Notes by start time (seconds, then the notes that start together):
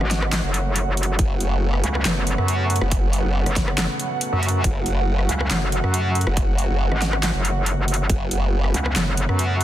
Already playing: C#3 F#3 A3 F#4 F#5
0.01 G#1, cross-stick
0.11 snare, closed hi-hat
0.22 cross-stick
0.32 snare, clap, closed hi-hat
0.44 F#1
0.54 closed hi-hat
0.76 closed hi-hat
0.87 F#1
0.97 closed hi-hat
1.03 closed hi-hat
1.19 F#1 B3, kick, closed hi-hat
1.40 closed hi-hat
1.74 cross-stick
1.84 C#2, closed hi-hat
1.95 cross-stick
2.05 F#1, snare, clap, closed hi-hat
2.27 closed hi-hat
2.38 F#2, cross-stick
2.48 closed hi-hat
2.70 closed hi-hat
2.76 closed hi-hat
2.81 F#1, cross-stick
2.91 kick, closed hi-hat
3.13 closed hi-hat
3.25 F#1
3.46 F#1, cross-stick, closed hi-hat
3.56 kick, snare, closed hi-hat
3.68 cross-stick
3.78 snare, clap, closed hi-hat
4.00 closed hi-hat
4.21 closed hi-hat
4.33 F#2
4.43 closed hi-hat
4.49 closed hi-hat
4.64 F#1 F#4, kick, closed hi-hat
4.86 closed hi-hat
5.19 cross-stick
5.29 C#2, closed hi-hat
5.41 cross-stick
5.51 F#1, snare, clap, closed hi-hat
5.72 closed hi-hat
5.84 F#2, cross-stick
5.94 closed hi-hat
6.15 closed hi-hat
6.21 closed hi-hat
6.27 F#1, cross-stick
6.37 kick, closed hi-hat
6.58 closed hi-hat
6.70 F#1
6.92 G#1, cross-stick
7.02 snare, closed hi-hat
7.13 cross-stick
7.23 snare, clap, closed hi-hat
7.35 F#1
7.45 closed hi-hat
7.66 closed hi-hat
7.78 F#1
7.88 closed hi-hat
7.94 closed hi-hat
8.10 F#1 B3, kick, closed hi-hat
8.31 closed hi-hat
8.64 cross-stick
8.74 C#2, closed hi-hat
8.86 cross-stick
8.96 F#1, snare, clap, closed hi-hat
9.17 closed hi-hat
9.29 F#2, cross-stick
9.39 closed hi-hat
9.61 closed hi-hat